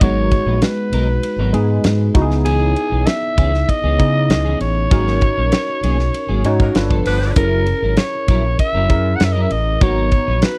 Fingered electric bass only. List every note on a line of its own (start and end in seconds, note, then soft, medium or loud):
0.01 0.35 G#1 loud
0.46 0.58 A#1 loud
0.92 1.15 B1 medium
1.38 1.50 G#1 loud
1.54 1.77 G#2 loud
1.85 2.07 G#2 loud
2.15 2.72 C#2 loud
2.92 3.03 B1 medium
3.38 3.60 C#2 medium
3.83 3.95 C#2 loud
4.00 4.31 C#3 loud
4.29 4.52 C#2 loud
4.61 4.83 A1 loud
4.91 5.25 G#1 loud
5.38 5.49 A#1 medium
5.83 6.06 B1 loud
6.29 6.40 G#1 medium
6.44 6.67 G#2 loud
6.75 6.98 G1 loud
7.06 7.29 G1 medium
7.37 7.70 F#1 loud
7.82 7.94 G#1 medium
8.29 8.51 A#1 loud
8.74 8.92 F#1 loud
8.90 9.12 F#2 loud
9.20 9.43 F#2 medium
9.51 9.74 A1 medium
9.81 10.15 G#1 medium
10.28 10.39 A#1 medium